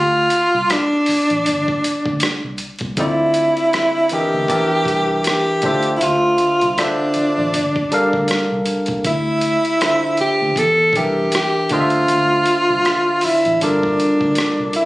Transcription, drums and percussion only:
0.30 closed hi-hat medium
0.70 cross-stick loud
0.70 closed hi-hat medium
1.06 open hi-hat soft
1.30 closed hi-hat soft
1.46 closed hi-hat medium
1.68 kick medium
1.84 closed hi-hat medium
2.06 kick medium
2.20 cross-stick medium
2.20 closed hi-hat medium
2.58 closed hi-hat medium
2.79 kick medium
2.79 closed hi-hat soft
2.97 kick medium
2.97 closed hi-hat medium
3.34 closed hi-hat medium
3.57 closed hi-hat soft
3.73 cross-stick loud
3.73 closed hi-hat medium
4.09 closed hi-hat medium
4.48 kick medium
4.48 closed hi-hat medium
4.85 kick medium
4.85 closed hi-hat medium
5.24 cross-stick medium
5.24 closed hi-hat medium
5.62 kick loud
5.62 closed hi-hat medium
5.83 closed hi-hat soft
6.01 closed hi-hat medium
6.38 closed hi-hat medium
6.61 closed hi-hat soft
6.78 cross-stick loud
6.78 closed hi-hat medium
7.14 closed hi-hat medium
7.54 closed hi-hat medium
7.76 kick medium
7.92 closed hi-hat medium
8.13 kick medium
8.28 cross-stick medium
8.28 closed hi-hat medium
8.66 closed hi-hat medium
8.86 kick medium
8.86 closed hi-hat soft
9.04 kick medium
9.04 closed hi-hat medium
9.41 closed hi-hat medium
9.65 closed hi-hat soft
9.81 cross-stick medium
9.81 closed hi-hat medium
10.17 closed hi-hat medium
10.56 kick medium
10.56 closed hi-hat medium
10.93 kick medium
10.93 closed hi-hat medium
11.32 cross-stick medium
11.32 closed hi-hat medium
11.69 kick medium
11.69 closed hi-hat medium
11.90 closed hi-hat soft
12.08 closed hi-hat medium
12.46 closed hi-hat medium
12.85 cross-stick medium
12.85 closed hi-hat medium
13.21 open hi-hat soft
13.45 closed hi-hat soft
13.61 closed hi-hat medium
13.83 kick medium
14.00 closed hi-hat medium
14.21 kick medium
14.35 cross-stick loud
14.35 closed hi-hat medium
14.73 closed hi-hat medium

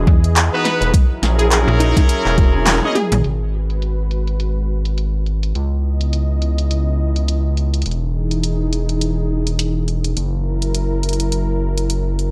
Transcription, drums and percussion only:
0.07 kick loud
0.24 closed hi-hat soft
0.36 clap loud
0.36 closed hi-hat medium
0.65 snare medium
0.65 closed hi-hat soft
0.82 closed hi-hat medium
0.94 kick loud
0.94 closed hi-hat medium
1.23 snare medium
1.23 closed hi-hat soft
1.39 closed hi-hat soft
1.52 clap loud
1.52 closed hi-hat medium
1.80 closed hi-hat medium
1.97 kick loud
1.97 snare soft
1.97 closed hi-hat medium
2.09 closed hi-hat medium
2.26 clap soft
2.38 kick loud
2.38 closed hi-hat soft
2.67 snare medium
2.67 clap loud
2.67 closed hi-hat medium
2.83 high tom medium
2.96 closed hi-hat soft
2.96 mid tom medium
3.12 closed hi-hat medium
3.12 mid tom medium
3.24 closed hi-hat medium
3.70 closed hi-hat soft
3.82 closed hi-hat medium
4.11 closed hi-hat medium
4.27 closed hi-hat medium
4.40 closed hi-hat medium
4.85 closed hi-hat medium
4.98 closed hi-hat medium
5.26 closed hi-hat soft
5.43 closed hi-hat medium
5.55 closed hi-hat medium
6.01 closed hi-hat medium
6.13 closed hi-hat medium
6.42 closed hi-hat medium
6.58 closed hi-hat medium
6.71 closed hi-hat medium
7.16 closed hi-hat medium
7.28 closed hi-hat medium
7.57 closed hi-hat soft
7.74 closed hi-hat medium
7.82 closed hi-hat soft
7.86 closed hi-hat medium
7.91 closed hi-hat soft
8.31 closed hi-hat soft
8.43 closed hi-hat medium
8.73 closed hi-hat medium
8.89 closed hi-hat medium
9.01 closed hi-hat medium
9.47 closed hi-hat soft
9.59 closed hi-hat medium
9.88 closed hi-hat soft
10.04 closed hi-hat medium
10.17 closed hi-hat medium
10.62 closed hi-hat soft
10.75 closed hi-hat medium
11.03 closed hi-hat medium
11.09 closed hi-hat soft
11.13 closed hi-hat soft
11.20 closed hi-hat medium
11.32 closed hi-hat medium
11.78 closed hi-hat soft
11.90 closed hi-hat medium
12.19 closed hi-hat soft

